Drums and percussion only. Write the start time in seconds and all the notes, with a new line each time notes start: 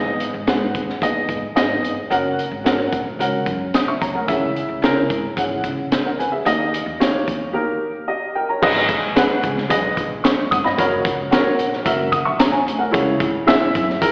0.20 closed hi-hat
0.47 snare, closed hi-hat
0.75 kick, closed hi-hat
0.89 snare
1.02 kick, closed hi-hat
1.29 kick, closed hi-hat
1.56 snare, closed hi-hat
1.84 closed hi-hat
2.11 closed hi-hat
2.39 closed hi-hat
2.66 snare, closed hi-hat
2.93 kick, closed hi-hat
3.20 closed hi-hat
3.46 kick, closed hi-hat
3.74 snare, closed hi-hat
4.02 kick, closed hi-hat
4.28 kick, closed hi-hat
4.56 closed hi-hat
4.84 snare, closed hi-hat
5.10 kick, closed hi-hat
5.37 kick, closed hi-hat
5.64 kick, closed hi-hat
5.92 snare, closed hi-hat
6.20 closed hi-hat
6.46 closed hi-hat
6.74 closed hi-hat
7.01 snare, closed hi-hat
7.28 kick, closed hi-hat
8.63 kick, crash
8.89 kick, closed hi-hat
9.16 snare, closed hi-hat
9.43 kick, closed hi-hat
9.58 snare
9.70 kick, closed hi-hat
9.97 kick, closed hi-hat
10.24 snare, closed hi-hat
10.52 kick, closed hi-hat
10.66 snare
10.79 kick, closed hi-hat
11.05 kick, closed hi-hat
11.32 snare, closed hi-hat
11.59 closed hi-hat
11.73 snare
11.86 kick, closed hi-hat
12.12 kick, closed hi-hat
12.40 snare, closed hi-hat
12.68 closed hi-hat
12.94 kick, closed hi-hat
13.20 kick, closed hi-hat
13.48 snare, closed hi-hat
13.75 kick, closed hi-hat
13.90 snare
14.02 kick, closed hi-hat